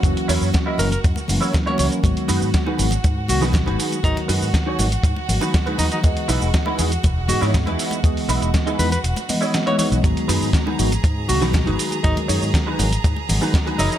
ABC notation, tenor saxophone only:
X:1
M:4/4
L:1/16
Q:1/4=120
K:G#m
V:1 name="Tenor saxophone"
z6 A A z4 z c c z | z8 z2 F z4 z | D z12 z D D | z8 z2 F z4 z |
z6 B B z4 z c c z | z8 z2 F z4 z | D z12 z D D |]